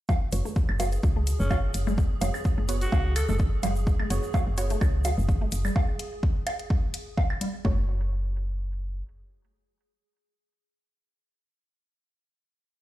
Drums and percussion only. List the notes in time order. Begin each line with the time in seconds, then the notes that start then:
0.09 kick, low woodblock, shaker
0.32 closed hi-hat, shaker
0.45 shaker
0.56 kick, shaker
0.69 high woodblock
0.80 closed hi-hat, low woodblock, shaker
0.92 closed hi-hat, shaker
1.03 kick, shaker
1.27 closed hi-hat, shaker
1.40 shaker
1.50 kick, high woodblock, low woodblock, shaker
1.74 closed hi-hat, shaker
1.87 low conga, shaker
1.98 kick, shaker
2.21 closed hi-hat, low woodblock, shaker
2.34 high woodblock, shaker
2.44 kick, shaker
2.69 closed hi-hat, shaker
2.81 closed hi-hat, shaker
2.92 kick, low woodblock, shaker
3.16 closed hi-hat, high woodblock, shaker
3.29 shaker
3.39 kick, shaker
3.63 closed hi-hat, low conga, low woodblock, shaker
3.76 shaker
3.87 kick, shaker
4.00 high woodblock
4.10 closed hi-hat, shaker
4.23 shaker
4.34 kick, low woodblock, shaker
4.58 closed hi-hat, shaker
4.70 closed hi-hat, shaker
4.81 kick, high woodblock, shaker
5.04 closed hi-hat, low woodblock, shaker
5.19 shaker
5.29 kick, shaker
5.52 closed hi-hat, shaker
5.65 low conga, high woodblock, shaker
5.76 kick, low woodblock
5.99 closed hi-hat
6.23 kick
6.47 closed hi-hat, high woodblock, low woodblock
6.59 closed hi-hat
6.70 kick
6.94 closed hi-hat
7.17 kick, low woodblock
7.30 high woodblock
7.41 closed hi-hat, low conga
7.65 kick